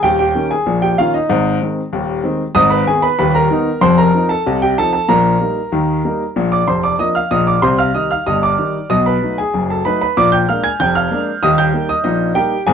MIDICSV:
0, 0, Header, 1, 2, 480
1, 0, Start_track
1, 0, Key_signature, -3, "major"
1, 0, Tempo, 631579
1, 35, Time_signature, 2, 2, 24, 8
1, 9677, End_track
2, 0, Start_track
2, 0, Title_t, "Grand piano"
2, 0, Program_c, 0, 0
2, 21, Note_on_c, 0, 79, 107
2, 24, Note_on_c, 0, 27, 78
2, 28, Note_on_c, 0, 39, 90
2, 33, Note_on_c, 0, 67, 83
2, 133, Note_off_c, 0, 79, 0
2, 143, Note_off_c, 0, 67, 0
2, 144, Note_on_c, 0, 79, 95
2, 154, Note_on_c, 0, 67, 73
2, 231, Note_off_c, 0, 27, 0
2, 234, Note_off_c, 0, 39, 0
2, 265, Note_on_c, 0, 51, 47
2, 268, Note_on_c, 0, 58, 44
2, 272, Note_on_c, 0, 61, 57
2, 376, Note_off_c, 0, 67, 0
2, 376, Note_off_c, 0, 79, 0
2, 385, Note_on_c, 0, 80, 96
2, 393, Note_on_c, 0, 68, 72
2, 399, Note_off_c, 0, 51, 0
2, 401, Note_off_c, 0, 58, 0
2, 404, Note_off_c, 0, 61, 0
2, 504, Note_on_c, 0, 34, 81
2, 505, Note_on_c, 0, 46, 74
2, 580, Note_off_c, 0, 80, 0
2, 616, Note_off_c, 0, 68, 0
2, 624, Note_on_c, 0, 79, 100
2, 630, Note_on_c, 0, 67, 66
2, 711, Note_off_c, 0, 34, 0
2, 712, Note_off_c, 0, 46, 0
2, 743, Note_off_c, 0, 67, 0
2, 746, Note_on_c, 0, 77, 93
2, 748, Note_off_c, 0, 79, 0
2, 750, Note_on_c, 0, 51, 51
2, 752, Note_on_c, 0, 58, 54
2, 754, Note_on_c, 0, 61, 62
2, 756, Note_on_c, 0, 65, 85
2, 866, Note_off_c, 0, 65, 0
2, 867, Note_on_c, 0, 75, 82
2, 869, Note_off_c, 0, 77, 0
2, 875, Note_on_c, 0, 63, 65
2, 883, Note_off_c, 0, 51, 0
2, 884, Note_off_c, 0, 58, 0
2, 885, Note_off_c, 0, 61, 0
2, 984, Note_on_c, 0, 44, 101
2, 985, Note_on_c, 0, 32, 86
2, 1156, Note_off_c, 0, 75, 0
2, 1190, Note_off_c, 0, 44, 0
2, 1191, Note_off_c, 0, 32, 0
2, 1208, Note_off_c, 0, 63, 0
2, 1229, Note_on_c, 0, 51, 47
2, 1233, Note_on_c, 0, 56, 54
2, 1236, Note_on_c, 0, 60, 56
2, 1361, Note_off_c, 0, 51, 0
2, 1364, Note_off_c, 0, 56, 0
2, 1366, Note_off_c, 0, 60, 0
2, 1464, Note_on_c, 0, 39, 80
2, 1465, Note_on_c, 0, 27, 86
2, 1669, Note_off_c, 0, 27, 0
2, 1669, Note_off_c, 0, 39, 0
2, 1699, Note_on_c, 0, 51, 59
2, 1704, Note_on_c, 0, 60, 67
2, 1705, Note_on_c, 0, 56, 53
2, 1832, Note_off_c, 0, 51, 0
2, 1836, Note_off_c, 0, 60, 0
2, 1837, Note_off_c, 0, 56, 0
2, 1936, Note_on_c, 0, 44, 100
2, 1936, Note_on_c, 0, 87, 127
2, 1940, Note_on_c, 0, 32, 95
2, 1943, Note_on_c, 0, 75, 91
2, 2055, Note_off_c, 0, 75, 0
2, 2055, Note_on_c, 0, 83, 100
2, 2060, Note_off_c, 0, 87, 0
2, 2064, Note_on_c, 0, 71, 82
2, 2143, Note_off_c, 0, 44, 0
2, 2145, Note_off_c, 0, 32, 0
2, 2176, Note_off_c, 0, 71, 0
2, 2179, Note_off_c, 0, 83, 0
2, 2184, Note_on_c, 0, 80, 102
2, 2185, Note_on_c, 0, 51, 60
2, 2189, Note_on_c, 0, 59, 49
2, 2191, Note_on_c, 0, 63, 51
2, 2191, Note_on_c, 0, 68, 72
2, 2298, Note_on_c, 0, 83, 103
2, 2299, Note_off_c, 0, 68, 0
2, 2304, Note_off_c, 0, 80, 0
2, 2307, Note_on_c, 0, 71, 75
2, 2316, Note_off_c, 0, 51, 0
2, 2319, Note_off_c, 0, 59, 0
2, 2321, Note_off_c, 0, 63, 0
2, 2410, Note_off_c, 0, 83, 0
2, 2417, Note_off_c, 0, 71, 0
2, 2422, Note_on_c, 0, 27, 92
2, 2422, Note_on_c, 0, 83, 108
2, 2424, Note_on_c, 0, 39, 94
2, 2432, Note_on_c, 0, 71, 83
2, 2539, Note_off_c, 0, 71, 0
2, 2542, Note_off_c, 0, 83, 0
2, 2543, Note_on_c, 0, 82, 104
2, 2552, Note_on_c, 0, 70, 84
2, 2626, Note_off_c, 0, 27, 0
2, 2627, Note_off_c, 0, 39, 0
2, 2663, Note_on_c, 0, 51, 64
2, 2666, Note_on_c, 0, 59, 60
2, 2671, Note_on_c, 0, 63, 72
2, 2795, Note_off_c, 0, 51, 0
2, 2797, Note_off_c, 0, 59, 0
2, 2800, Note_off_c, 0, 63, 0
2, 2881, Note_off_c, 0, 70, 0
2, 2884, Note_off_c, 0, 82, 0
2, 2897, Note_on_c, 0, 41, 106
2, 2898, Note_on_c, 0, 29, 85
2, 2899, Note_on_c, 0, 84, 124
2, 2905, Note_on_c, 0, 72, 94
2, 3015, Note_off_c, 0, 72, 0
2, 3020, Note_off_c, 0, 84, 0
2, 3022, Note_on_c, 0, 82, 106
2, 3033, Note_on_c, 0, 70, 85
2, 3103, Note_off_c, 0, 29, 0
2, 3103, Note_off_c, 0, 41, 0
2, 3148, Note_on_c, 0, 53, 58
2, 3151, Note_on_c, 0, 60, 58
2, 3154, Note_on_c, 0, 63, 60
2, 3213, Note_off_c, 0, 82, 0
2, 3251, Note_off_c, 0, 70, 0
2, 3261, Note_on_c, 0, 81, 98
2, 3275, Note_on_c, 0, 69, 78
2, 3278, Note_off_c, 0, 53, 0
2, 3280, Note_off_c, 0, 60, 0
2, 3283, Note_off_c, 0, 63, 0
2, 3392, Note_on_c, 0, 48, 81
2, 3393, Note_on_c, 0, 36, 83
2, 3490, Note_off_c, 0, 81, 0
2, 3492, Note_off_c, 0, 69, 0
2, 3512, Note_on_c, 0, 79, 102
2, 3521, Note_on_c, 0, 67, 74
2, 3592, Note_off_c, 0, 48, 0
2, 3593, Note_off_c, 0, 36, 0
2, 3624, Note_off_c, 0, 67, 0
2, 3627, Note_off_c, 0, 79, 0
2, 3634, Note_on_c, 0, 53, 58
2, 3634, Note_on_c, 0, 81, 111
2, 3637, Note_on_c, 0, 60, 53
2, 3638, Note_on_c, 0, 63, 58
2, 3640, Note_on_c, 0, 69, 82
2, 3736, Note_off_c, 0, 81, 0
2, 3744, Note_off_c, 0, 69, 0
2, 3747, Note_on_c, 0, 81, 94
2, 3758, Note_on_c, 0, 69, 68
2, 3764, Note_off_c, 0, 53, 0
2, 3766, Note_off_c, 0, 60, 0
2, 3767, Note_off_c, 0, 63, 0
2, 3863, Note_off_c, 0, 69, 0
2, 3865, Note_on_c, 0, 46, 90
2, 3865, Note_on_c, 0, 82, 106
2, 3866, Note_off_c, 0, 81, 0
2, 3866, Note_on_c, 0, 34, 88
2, 3874, Note_on_c, 0, 70, 76
2, 4070, Note_off_c, 0, 46, 0
2, 4071, Note_off_c, 0, 34, 0
2, 4109, Note_on_c, 0, 55, 53
2, 4112, Note_on_c, 0, 58, 45
2, 4116, Note_on_c, 0, 63, 47
2, 4241, Note_off_c, 0, 55, 0
2, 4243, Note_off_c, 0, 58, 0
2, 4246, Note_off_c, 0, 63, 0
2, 4348, Note_on_c, 0, 39, 79
2, 4350, Note_on_c, 0, 51, 78
2, 4554, Note_off_c, 0, 39, 0
2, 4555, Note_off_c, 0, 51, 0
2, 4596, Note_on_c, 0, 55, 55
2, 4597, Note_on_c, 0, 58, 55
2, 4601, Note_on_c, 0, 63, 52
2, 4727, Note_off_c, 0, 55, 0
2, 4728, Note_off_c, 0, 58, 0
2, 4731, Note_off_c, 0, 63, 0
2, 4735, Note_off_c, 0, 82, 0
2, 4835, Note_on_c, 0, 34, 76
2, 4835, Note_on_c, 0, 46, 81
2, 4927, Note_off_c, 0, 70, 0
2, 4955, Note_on_c, 0, 86, 88
2, 4965, Note_on_c, 0, 74, 73
2, 5027, Note_off_c, 0, 34, 0
2, 5027, Note_off_c, 0, 46, 0
2, 5071, Note_off_c, 0, 74, 0
2, 5074, Note_off_c, 0, 86, 0
2, 5074, Note_on_c, 0, 29, 73
2, 5074, Note_on_c, 0, 84, 89
2, 5076, Note_on_c, 0, 41, 69
2, 5082, Note_on_c, 0, 72, 69
2, 5190, Note_off_c, 0, 72, 0
2, 5194, Note_off_c, 0, 84, 0
2, 5194, Note_on_c, 0, 86, 88
2, 5206, Note_on_c, 0, 74, 60
2, 5267, Note_off_c, 0, 29, 0
2, 5268, Note_off_c, 0, 41, 0
2, 5313, Note_off_c, 0, 74, 0
2, 5314, Note_on_c, 0, 62, 43
2, 5315, Note_off_c, 0, 86, 0
2, 5315, Note_on_c, 0, 87, 88
2, 5317, Note_on_c, 0, 53, 53
2, 5317, Note_on_c, 0, 58, 50
2, 5321, Note_on_c, 0, 75, 79
2, 5430, Note_off_c, 0, 75, 0
2, 5434, Note_on_c, 0, 89, 83
2, 5435, Note_off_c, 0, 87, 0
2, 5444, Note_on_c, 0, 77, 70
2, 5447, Note_off_c, 0, 62, 0
2, 5449, Note_off_c, 0, 53, 0
2, 5449, Note_off_c, 0, 58, 0
2, 5552, Note_off_c, 0, 77, 0
2, 5555, Note_off_c, 0, 89, 0
2, 5555, Note_on_c, 0, 46, 81
2, 5555, Note_on_c, 0, 87, 99
2, 5558, Note_on_c, 0, 34, 80
2, 5563, Note_on_c, 0, 75, 75
2, 5672, Note_off_c, 0, 75, 0
2, 5676, Note_off_c, 0, 87, 0
2, 5678, Note_on_c, 0, 86, 87
2, 5687, Note_on_c, 0, 74, 61
2, 5748, Note_off_c, 0, 46, 0
2, 5750, Note_off_c, 0, 34, 0
2, 5793, Note_on_c, 0, 84, 116
2, 5794, Note_off_c, 0, 74, 0
2, 5794, Note_on_c, 0, 48, 87
2, 5797, Note_on_c, 0, 36, 80
2, 5798, Note_off_c, 0, 86, 0
2, 5802, Note_on_c, 0, 72, 82
2, 5912, Note_off_c, 0, 72, 0
2, 5915, Note_off_c, 0, 84, 0
2, 5916, Note_on_c, 0, 89, 95
2, 5925, Note_on_c, 0, 77, 77
2, 6000, Note_off_c, 0, 48, 0
2, 6002, Note_off_c, 0, 36, 0
2, 6033, Note_off_c, 0, 77, 0
2, 6037, Note_off_c, 0, 89, 0
2, 6038, Note_on_c, 0, 51, 46
2, 6039, Note_on_c, 0, 87, 80
2, 6042, Note_on_c, 0, 55, 53
2, 6045, Note_on_c, 0, 63, 54
2, 6047, Note_on_c, 0, 75, 64
2, 6155, Note_off_c, 0, 75, 0
2, 6159, Note_off_c, 0, 87, 0
2, 6161, Note_on_c, 0, 89, 83
2, 6168, Note_on_c, 0, 77, 65
2, 6170, Note_off_c, 0, 51, 0
2, 6173, Note_off_c, 0, 55, 0
2, 6175, Note_off_c, 0, 63, 0
2, 6276, Note_off_c, 0, 77, 0
2, 6280, Note_off_c, 0, 89, 0
2, 6281, Note_on_c, 0, 87, 94
2, 6282, Note_on_c, 0, 43, 80
2, 6284, Note_on_c, 0, 31, 72
2, 6289, Note_on_c, 0, 75, 76
2, 6396, Note_off_c, 0, 75, 0
2, 6400, Note_off_c, 0, 87, 0
2, 6406, Note_on_c, 0, 86, 93
2, 6414, Note_on_c, 0, 74, 69
2, 6485, Note_off_c, 0, 43, 0
2, 6486, Note_off_c, 0, 31, 0
2, 6522, Note_on_c, 0, 51, 55
2, 6526, Note_on_c, 0, 55, 49
2, 6532, Note_on_c, 0, 63, 53
2, 6654, Note_off_c, 0, 51, 0
2, 6656, Note_off_c, 0, 55, 0
2, 6660, Note_off_c, 0, 63, 0
2, 6742, Note_off_c, 0, 74, 0
2, 6745, Note_off_c, 0, 86, 0
2, 6761, Note_on_c, 0, 47, 92
2, 6763, Note_on_c, 0, 35, 78
2, 6763, Note_on_c, 0, 87, 108
2, 6770, Note_on_c, 0, 75, 91
2, 6877, Note_off_c, 0, 75, 0
2, 6881, Note_off_c, 0, 87, 0
2, 6886, Note_on_c, 0, 83, 86
2, 6896, Note_on_c, 0, 71, 77
2, 6964, Note_off_c, 0, 47, 0
2, 6966, Note_off_c, 0, 35, 0
2, 7007, Note_on_c, 0, 54, 45
2, 7013, Note_on_c, 0, 57, 46
2, 7017, Note_on_c, 0, 63, 51
2, 7111, Note_off_c, 0, 83, 0
2, 7112, Note_off_c, 0, 71, 0
2, 7130, Note_on_c, 0, 80, 87
2, 7137, Note_off_c, 0, 54, 0
2, 7140, Note_on_c, 0, 68, 68
2, 7142, Note_off_c, 0, 57, 0
2, 7145, Note_off_c, 0, 63, 0
2, 7249, Note_on_c, 0, 42, 71
2, 7251, Note_on_c, 0, 30, 74
2, 7318, Note_off_c, 0, 80, 0
2, 7354, Note_off_c, 0, 68, 0
2, 7374, Note_on_c, 0, 81, 75
2, 7383, Note_on_c, 0, 69, 59
2, 7449, Note_off_c, 0, 42, 0
2, 7450, Note_off_c, 0, 30, 0
2, 7484, Note_off_c, 0, 69, 0
2, 7486, Note_on_c, 0, 83, 97
2, 7487, Note_off_c, 0, 81, 0
2, 7491, Note_on_c, 0, 54, 51
2, 7492, Note_on_c, 0, 57, 53
2, 7497, Note_on_c, 0, 71, 77
2, 7498, Note_on_c, 0, 63, 64
2, 7600, Note_off_c, 0, 83, 0
2, 7601, Note_off_c, 0, 71, 0
2, 7611, Note_on_c, 0, 83, 92
2, 7619, Note_on_c, 0, 71, 67
2, 7620, Note_off_c, 0, 54, 0
2, 7620, Note_off_c, 0, 57, 0
2, 7625, Note_off_c, 0, 63, 0
2, 7722, Note_off_c, 0, 71, 0
2, 7725, Note_off_c, 0, 83, 0
2, 7730, Note_on_c, 0, 46, 97
2, 7730, Note_on_c, 0, 86, 112
2, 7732, Note_on_c, 0, 34, 75
2, 7739, Note_on_c, 0, 74, 85
2, 7842, Note_off_c, 0, 74, 0
2, 7844, Note_on_c, 0, 91, 100
2, 7845, Note_off_c, 0, 86, 0
2, 7852, Note_on_c, 0, 79, 75
2, 7930, Note_off_c, 0, 46, 0
2, 7931, Note_off_c, 0, 34, 0
2, 7958, Note_off_c, 0, 79, 0
2, 7961, Note_off_c, 0, 91, 0
2, 7969, Note_on_c, 0, 89, 83
2, 7971, Note_on_c, 0, 56, 46
2, 7973, Note_on_c, 0, 58, 56
2, 7977, Note_on_c, 0, 77, 58
2, 7978, Note_on_c, 0, 62, 51
2, 8080, Note_off_c, 0, 77, 0
2, 8083, Note_on_c, 0, 92, 93
2, 8084, Note_off_c, 0, 89, 0
2, 8090, Note_on_c, 0, 80, 68
2, 8099, Note_off_c, 0, 56, 0
2, 8101, Note_off_c, 0, 58, 0
2, 8105, Note_off_c, 0, 62, 0
2, 8196, Note_off_c, 0, 80, 0
2, 8201, Note_off_c, 0, 92, 0
2, 8207, Note_on_c, 0, 91, 105
2, 8209, Note_on_c, 0, 29, 75
2, 8211, Note_on_c, 0, 41, 80
2, 8216, Note_on_c, 0, 79, 80
2, 8319, Note_off_c, 0, 79, 0
2, 8323, Note_off_c, 0, 91, 0
2, 8325, Note_on_c, 0, 89, 97
2, 8335, Note_on_c, 0, 77, 71
2, 8408, Note_off_c, 0, 29, 0
2, 8409, Note_off_c, 0, 41, 0
2, 8442, Note_on_c, 0, 56, 54
2, 8449, Note_on_c, 0, 58, 54
2, 8450, Note_on_c, 0, 62, 65
2, 8573, Note_off_c, 0, 56, 0
2, 8578, Note_off_c, 0, 58, 0
2, 8578, Note_off_c, 0, 62, 0
2, 8661, Note_off_c, 0, 77, 0
2, 8663, Note_off_c, 0, 89, 0
2, 8684, Note_on_c, 0, 87, 118
2, 8685, Note_on_c, 0, 27, 85
2, 8686, Note_on_c, 0, 39, 94
2, 8692, Note_on_c, 0, 75, 85
2, 8796, Note_off_c, 0, 75, 0
2, 8800, Note_off_c, 0, 87, 0
2, 8802, Note_on_c, 0, 91, 108
2, 8812, Note_on_c, 0, 79, 83
2, 8885, Note_off_c, 0, 27, 0
2, 8885, Note_off_c, 0, 39, 0
2, 8921, Note_on_c, 0, 55, 48
2, 8923, Note_on_c, 0, 58, 50
2, 8926, Note_on_c, 0, 63, 51
2, 9026, Note_off_c, 0, 91, 0
2, 9027, Note_off_c, 0, 79, 0
2, 9038, Note_on_c, 0, 87, 102
2, 9046, Note_on_c, 0, 75, 70
2, 9050, Note_off_c, 0, 55, 0
2, 9052, Note_off_c, 0, 58, 0
2, 9054, Note_off_c, 0, 63, 0
2, 9138, Note_off_c, 0, 75, 0
2, 9150, Note_on_c, 0, 75, 90
2, 9154, Note_on_c, 0, 34, 72
2, 9154, Note_on_c, 0, 46, 75
2, 9156, Note_off_c, 0, 87, 0
2, 9159, Note_on_c, 0, 63, 66
2, 9357, Note_off_c, 0, 34, 0
2, 9357, Note_off_c, 0, 46, 0
2, 9378, Note_off_c, 0, 63, 0
2, 9378, Note_off_c, 0, 75, 0
2, 9385, Note_on_c, 0, 55, 60
2, 9387, Note_on_c, 0, 79, 103
2, 9388, Note_on_c, 0, 58, 55
2, 9393, Note_on_c, 0, 67, 84
2, 9394, Note_on_c, 0, 63, 60
2, 9519, Note_off_c, 0, 55, 0
2, 9521, Note_off_c, 0, 58, 0
2, 9525, Note_off_c, 0, 63, 0
2, 9580, Note_off_c, 0, 79, 0
2, 9615, Note_off_c, 0, 67, 0
2, 9626, Note_on_c, 0, 80, 116
2, 9631, Note_on_c, 0, 44, 95
2, 9632, Note_on_c, 0, 32, 89
2, 9639, Note_on_c, 0, 68, 83
2, 9677, Note_off_c, 0, 32, 0
2, 9677, Note_off_c, 0, 44, 0
2, 9677, Note_off_c, 0, 68, 0
2, 9677, Note_off_c, 0, 80, 0
2, 9677, End_track
0, 0, End_of_file